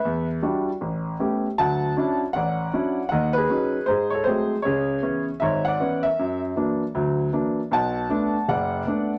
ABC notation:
X:1
M:4/4
L:1/16
Q:"Swing" 1/4=156
K:Bdor
V:1 name="Grand piano"
[Be]2 z12 z2 | [fa]6 z2 [df]8 | [^df]2 [GB]6 [G^B]2 [Ac]2 [GB]3 z | [Gc]6 z2 [ce]2 [df]4 [_Be]2- |
[_Be]2 z12 z2 | [fa]8 [df]8 |]
V:2 name="Grand piano"
E,,4 [=G,DEF]2 z2 A,,,4 [A,B,C=G]2 z2 | [D,,F,]4 [F,CDE]2 z2 A,,,4 [F,CDE]2 z2 | [^D,,^D,]4 [F,C^D]2 z2 G,,4 [F,G,A,^B,]2 z2 | [C,,C,]4 [E,B,C]2 z2 [G,,,G,,]4 [E,B,C]2 z2 |
F,,4 [E,F,^A,D]2 z2 [D,,F,]4 [E,F,A,D]2 z2 | [B,,,B,,]4 [A,B,D]2 z2 F,,,4 [A,B,D]2 z2 |]